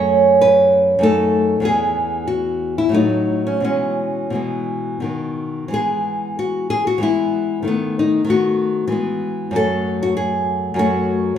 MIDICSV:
0, 0, Header, 1, 2, 480
1, 0, Start_track
1, 0, Key_signature, 4, "major"
1, 0, Tempo, 619195
1, 1285, Time_signature, 3, 2, 24, 8
1, 1775, Tempo, 660793
1, 2255, Tempo, 707547
1, 3695, Tempo, 666667
1, 4655, Tempo, 638978
1, 6095, Tempo, 619835
1, 8464, End_track
2, 0, Start_track
2, 0, Title_t, "Nylon-string guitar"
2, 0, Program_c, 0, 24
2, 0, Note_on_c, 0, 42, 58
2, 0, Note_on_c, 0, 57, 47
2, 0, Note_on_c, 0, 61, 50
2, 0, Note_on_c, 0, 73, 102
2, 313, Note_off_c, 0, 73, 0
2, 321, Note_on_c, 0, 71, 83
2, 757, Note_off_c, 0, 42, 0
2, 765, Note_off_c, 0, 57, 0
2, 765, Note_on_c, 0, 42, 55
2, 773, Note_off_c, 0, 61, 0
2, 780, Note_off_c, 0, 71, 0
2, 782, Note_on_c, 0, 57, 50
2, 796, Note_on_c, 0, 63, 50
2, 801, Note_on_c, 0, 69, 97
2, 1238, Note_off_c, 0, 42, 0
2, 1241, Note_on_c, 0, 40, 51
2, 1254, Note_on_c, 0, 52, 44
2, 1257, Note_off_c, 0, 57, 0
2, 1261, Note_off_c, 0, 63, 0
2, 1262, Note_off_c, 0, 69, 0
2, 1264, Note_on_c, 0, 59, 42
2, 1279, Note_on_c, 0, 68, 87
2, 1752, Note_off_c, 0, 68, 0
2, 1763, Note_on_c, 0, 66, 70
2, 2112, Note_off_c, 0, 66, 0
2, 2132, Note_on_c, 0, 64, 70
2, 2206, Note_off_c, 0, 40, 0
2, 2212, Note_off_c, 0, 52, 0
2, 2212, Note_on_c, 0, 45, 49
2, 2217, Note_off_c, 0, 59, 0
2, 2229, Note_on_c, 0, 54, 38
2, 2242, Note_on_c, 0, 57, 40
2, 2250, Note_on_c, 0, 63, 76
2, 2255, Note_off_c, 0, 64, 0
2, 2596, Note_off_c, 0, 63, 0
2, 2605, Note_on_c, 0, 61, 65
2, 2696, Note_off_c, 0, 45, 0
2, 2698, Note_on_c, 0, 47, 42
2, 2707, Note_off_c, 0, 54, 0
2, 2710, Note_on_c, 0, 52, 36
2, 2714, Note_off_c, 0, 57, 0
2, 2718, Note_off_c, 0, 61, 0
2, 2721, Note_on_c, 0, 56, 37
2, 2726, Note_on_c, 0, 61, 68
2, 3165, Note_off_c, 0, 47, 0
2, 3173, Note_on_c, 0, 47, 38
2, 3180, Note_off_c, 0, 52, 0
2, 3188, Note_on_c, 0, 52, 35
2, 3190, Note_off_c, 0, 56, 0
2, 3192, Note_off_c, 0, 61, 0
2, 3198, Note_on_c, 0, 56, 31
2, 3206, Note_on_c, 0, 59, 44
2, 3639, Note_off_c, 0, 47, 0
2, 3647, Note_on_c, 0, 47, 39
2, 3656, Note_off_c, 0, 52, 0
2, 3659, Note_on_c, 0, 51, 34
2, 3664, Note_off_c, 0, 59, 0
2, 3672, Note_off_c, 0, 56, 0
2, 3672, Note_on_c, 0, 59, 37
2, 4131, Note_off_c, 0, 51, 0
2, 4134, Note_on_c, 0, 52, 46
2, 4147, Note_off_c, 0, 47, 0
2, 4150, Note_on_c, 0, 56, 39
2, 4157, Note_off_c, 0, 59, 0
2, 4165, Note_on_c, 0, 59, 35
2, 4173, Note_on_c, 0, 68, 70
2, 4628, Note_off_c, 0, 68, 0
2, 4642, Note_on_c, 0, 66, 65
2, 4873, Note_off_c, 0, 66, 0
2, 4876, Note_on_c, 0, 68, 84
2, 5000, Note_off_c, 0, 68, 0
2, 5003, Note_on_c, 0, 66, 75
2, 5076, Note_off_c, 0, 52, 0
2, 5086, Note_on_c, 0, 52, 54
2, 5089, Note_off_c, 0, 56, 0
2, 5097, Note_off_c, 0, 59, 0
2, 5099, Note_on_c, 0, 56, 40
2, 5112, Note_on_c, 0, 59, 44
2, 5118, Note_off_c, 0, 66, 0
2, 5121, Note_on_c, 0, 64, 84
2, 5567, Note_off_c, 0, 52, 0
2, 5570, Note_on_c, 0, 51, 44
2, 5582, Note_off_c, 0, 56, 0
2, 5585, Note_on_c, 0, 57, 41
2, 5590, Note_off_c, 0, 59, 0
2, 5590, Note_off_c, 0, 64, 0
2, 5608, Note_on_c, 0, 59, 67
2, 5842, Note_off_c, 0, 59, 0
2, 5846, Note_on_c, 0, 63, 78
2, 6027, Note_off_c, 0, 51, 0
2, 6036, Note_on_c, 0, 51, 51
2, 6045, Note_off_c, 0, 57, 0
2, 6054, Note_on_c, 0, 57, 35
2, 6064, Note_off_c, 0, 63, 0
2, 6067, Note_on_c, 0, 59, 39
2, 6077, Note_on_c, 0, 66, 77
2, 6519, Note_off_c, 0, 51, 0
2, 6522, Note_on_c, 0, 52, 55
2, 6533, Note_off_c, 0, 57, 0
2, 6536, Note_on_c, 0, 56, 40
2, 6547, Note_off_c, 0, 59, 0
2, 6556, Note_on_c, 0, 59, 43
2, 7013, Note_on_c, 0, 42, 48
2, 7018, Note_off_c, 0, 52, 0
2, 7022, Note_off_c, 0, 66, 0
2, 7026, Note_off_c, 0, 56, 0
2, 7028, Note_on_c, 0, 54, 41
2, 7036, Note_off_c, 0, 59, 0
2, 7046, Note_on_c, 0, 57, 40
2, 7052, Note_on_c, 0, 69, 90
2, 7398, Note_off_c, 0, 69, 0
2, 7413, Note_on_c, 0, 66, 81
2, 7519, Note_off_c, 0, 66, 0
2, 7523, Note_on_c, 0, 68, 78
2, 7958, Note_off_c, 0, 42, 0
2, 7967, Note_on_c, 0, 42, 59
2, 7969, Note_off_c, 0, 54, 0
2, 7978, Note_off_c, 0, 57, 0
2, 7983, Note_on_c, 0, 54, 48
2, 7989, Note_off_c, 0, 68, 0
2, 8001, Note_on_c, 0, 57, 48
2, 8007, Note_on_c, 0, 66, 81
2, 8445, Note_off_c, 0, 42, 0
2, 8457, Note_off_c, 0, 57, 0
2, 8462, Note_off_c, 0, 54, 0
2, 8464, Note_off_c, 0, 66, 0
2, 8464, End_track
0, 0, End_of_file